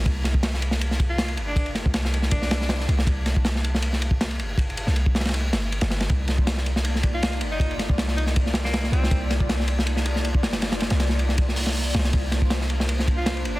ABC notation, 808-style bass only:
X:1
M:4/4
L:1/16
Q:"Swing 16ths" 1/4=159
K:Cm
V:1 name="808-style bass" clef=bass
C,,12- C,,2 G,,,2- | G,,,3 C,,8- C,,3 C,,2 | C,,12- C,,2 G,,,2- | G,,,3 C,,6- C,, G,,,3 G,,,3 |
C,,12- C,,2 G,,,2- | G,,,3 C,,8- C,,3 C,,2 | C,,12- C,,2 G,,,2- | G,,,3 C,,8- C,,3 C,,2 |
C,,12- C,,2 G,,,2 |]